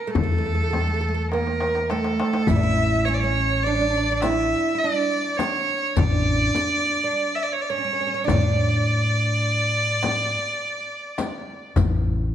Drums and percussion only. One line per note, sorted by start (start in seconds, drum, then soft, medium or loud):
0.15 frame drum medium
0.15 darbuka dum medium
0.73 darbuka tek medium
0.73 frame drum medium
1.32 darbuka tek soft
1.47 darbuka ka medium
1.60 darbuka tek medium
1.75 darbuka ka medium
1.90 darbuka tek medium
2.04 darbuka ka medium
2.20 darbuka tek medium
2.33 darbuka ka medium
2.47 riq medium
2.47 frame drum medium
2.47 darbuka dum medium
4.22 riq soft
4.22 darbuka tek medium
4.22 frame drum medium
5.39 riq soft
5.39 darbuka tek medium
5.39 frame drum medium
5.96 riq medium
5.96 frame drum medium
5.96 darbuka dum medium
6.55 riq medium
6.55 frame drum medium
7.71 darbuka ka soft
8.28 riq medium
8.28 frame drum medium
8.28 darbuka dum medium
10.03 riq soft
10.03 darbuka tek medium
10.03 frame drum medium
11.18 riq medium
11.18 darbuka tek medium
11.18 frame drum medium
11.76 riq medium
11.76 darbuka dum loud
11.76 frame drum medium